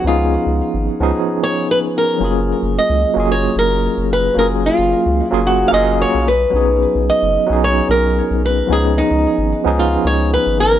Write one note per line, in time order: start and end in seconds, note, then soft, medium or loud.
0.02 0.37 C#2 loud
0.02 0.96 F3 medium
0.02 0.97 B3 medium
0.02 0.97 C#4 medium
0.06 0.98 D#4 medium
0.06 1.91 F4 medium
0.06 0.99 G#4 medium
0.46 0.62 C#2 medium
0.74 0.89 G#1 medium
1.00 1.13 C#2 medium
1.00 1.37 F3 loud
1.00 1.37 B3 medium
1.00 1.37 C#4 medium
1.00 1.38 D#4 medium
1.00 1.38 G#4 loud
1.43 1.67 C#5 loud
1.71 1.78 B4 loud
1.98 2.73 A#4 loud
2.18 2.53 F#1 medium
2.18 3.12 F#3 medium
2.18 3.13 A#3 medium
2.18 3.13 C#4 medium
2.23 3.14 F4 medium
2.23 3.15 G#4 medium
2.63 2.78 F#1 medium
2.79 3.27 D#5 loud
2.90 3.05 C#2 loud
3.14 3.48 F#1 medium
3.14 4.32 F#3 medium
3.14 4.33 A#3 medium
3.14 4.34 C#4 medium
3.18 4.35 F4 medium
3.18 4.36 G#4 loud
3.32 3.58 C#5 loud
3.56 3.89 F#1 loud
3.56 4.08 A#4 loud
3.97 4.29 F#1 medium
4.13 4.38 B4 medium
4.34 4.69 F#1 medium
4.34 5.28 F#3 medium
4.34 5.29 A#3 medium
4.34 5.29 C#4 medium
4.38 5.30 F4 medium
4.38 5.31 G#4 medium
4.38 4.46 A#4 loud
4.66 5.49 F4 loud
4.79 4.94 F#1 medium
5.06 5.22 C#2 loud
5.30 5.65 F#1 medium
5.30 5.68 F#3 loud
5.30 5.69 A#3 medium
5.30 5.69 C#4 medium
5.30 5.69 F4 medium
5.30 5.70 G#4 loud
5.47 5.68 F#4 medium
5.68 6.24 F#3 loud
5.68 6.25 A#3 medium
5.68 5.73 F5 medium
5.72 6.05 F#1 loud
5.72 6.25 C#4 medium
5.72 6.26 F4 medium
5.72 6.26 G#4 loud
5.72 5.98 D#5 medium
6.02 6.28 C#5 loud
6.14 6.46 B1 medium
6.28 7.04 B4 medium
6.50 6.86 B1 loud
6.50 7.44 F#3 medium
6.50 7.45 B3 medium
6.50 7.46 C#4 medium
6.55 7.47 D#4 medium
6.55 7.47 G#4 loud
6.95 7.11 B1 medium
7.10 7.64 D#5 loud
7.23 7.38 F#1 medium
7.46 7.81 B1 medium
7.46 8.65 F#3 medium
7.46 8.66 B3 medium
7.46 8.67 C#4 medium
7.51 8.68 D#4 medium
7.51 8.68 G#4 medium
7.64 7.90 C#5 loud
7.89 8.21 B1 loud
7.89 8.45 A#4 loud
8.31 8.62 B1 medium
8.46 8.72 B4 medium
8.67 9.02 C#2 loud
8.67 9.61 F3 medium
8.67 9.62 B3 medium
8.67 9.62 C#4 medium
8.72 9.63 D#4 medium
8.72 8.99 G#4 loud
8.72 9.64 G#4 loud
8.98 9.81 D#4 loud
9.11 9.27 C#2 medium
9.38 9.54 G#1 loud
9.64 9.97 C#2 loud
9.64 10.01 F3 medium
9.64 10.01 B3 medium
9.64 10.02 C#4 medium
9.64 10.02 D#4 medium
9.64 10.03 G#4 loud
9.79 10.06 F4 medium
10.05 10.37 C#2 loud
10.05 10.31 C#5 medium
10.34 10.60 B4 medium
10.47 10.78 G#1 medium
10.60 10.79 A#4 loud